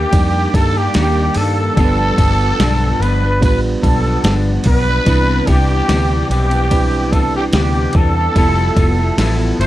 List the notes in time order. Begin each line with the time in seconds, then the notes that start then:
Already playing: G3 A#3 D4 D#4 G4 A#4
0.12 F2 G3 A#3 D4 D#4 G4, kick, snare, ride
0.54 G2 D#3 G3 A#3 D4 A4, kick, ride
0.76 G3 A#3 D4 G4
0.94 D#2 D#3 G3 A#3 D4 G4, snare, ride
1.35 G2 D#3 G3 A#3 A4, open hi-hat, ride
1.39 D4
1.76 G1 G2 F3 G3 B3 D4 F4 A4, kick, ride
1.80 D4
1.85 B4
2.18 G1 G2 F3 B3 D4, kick, ride
2.40 F3 B3 D4
2.59 B1 G2 F3 B3 D4, snare, ride
3.00 G1 G2 F3 B3 D4 B4, ride
3.23 F3 B3 D4
3.41 A1 G3 B3 D4 F4 B4, kick, snare, ride
3.82 B1 G2 F3 B3 D4 A4, kick, ride
4.05 F3 B3 D4
4.24 G1 G2 F3 B3 D4, snare, ride
4.64 B1 G2 F3 B3 D4 B4, kick, open hi-hat, ride
4.88 F3 B3 D4
5.05 C2 C3 E3 G3 B3 C4 D4 E4 B4, kick, ride
5.47 C2 C3 E3 B3 D4 G4, kick, ride
5.72 E3 B3
5.88 D2 C3 E3 B3 D4, snare, ride
6.30 B1 C3 E3 B3 D4 G4, ride
6.51 E3 B3 D4, ride
6.71 G3 C4 D4 E4 B4, kick, ride
7.12 C3 E3 B3 D4 A4, kick, ride
7.35 E3 B3 D4 G4
7.53 D2 C3 E3 B3 D4 G4, snare, ride
7.93 E2 C3 E3 A4, kick, ride
7.97 B3 D4
8.18 E3 B3 D4
8.35 F1 F3 G3 B3 E4 F4 A4, kick, ride
8.76 F1 F3 B3 E4 A4, kick, ride
8.99 B3 E4 A4
9.18 A1 F3 B3 E4 A4, snare, ride
9.59 G1 F3 B3 E4 A4 C5, ride